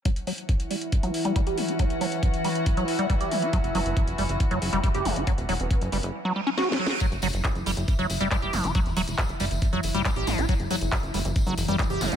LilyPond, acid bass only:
\new Staff \with { instrumentName = "Acid bass" } { \clef bass \time 4/4 \key e \dorian \tempo 4 = 138 fis16 r16 fis16 r8. g16 r8 fis16 r16 g16 g16 g'16 e16 fis'16 | fis16 r16 fis16 r8. g16 r8 fis16 r16 g16 g16 g'16 e16 fis'16 | fis16 r16 fis16 r8. g16 r8 fis16 r16 g16 g16 g'16 e16 fis'16 | fis16 r16 fis16 r8. g16 r8 fis16 g16 cis'16 fis'16 e16 fis16 fis'16 |
fis16 r16 fis16 r8. g16 r8 fis16 r16 g16 g16 g'16 e16 fis'16 | fis16 r16 fis16 r8. g16 r8 fis16 r16 g16 g16 g'16 e16 fis'16 | fis16 r16 fis16 r8. g16 r8 fis16 r16 g16 g16 g'16 e16 fis'16 | }